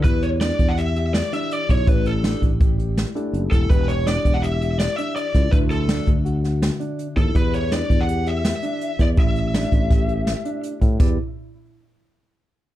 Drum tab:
CC |----------|----------|----------|----------|
HH |xxxxxxxxxx|xxxxxxxxxx|xxxxxxxxxx|xxxxxxxxxx|
SD |--o---o---|--o---o---|--o---o--o|--o--oo---|
BD |o--o-----o|o--oo----o|o--o-----o|o--o-----o|

CC |----------|----------|x---------|
HH |xxxxxxxxxx|xxxxxxxxxx|----------|
SD |--o---o--o|--o-o-o---|----------|
BD |o--o-----o|o--oo----o|o---------|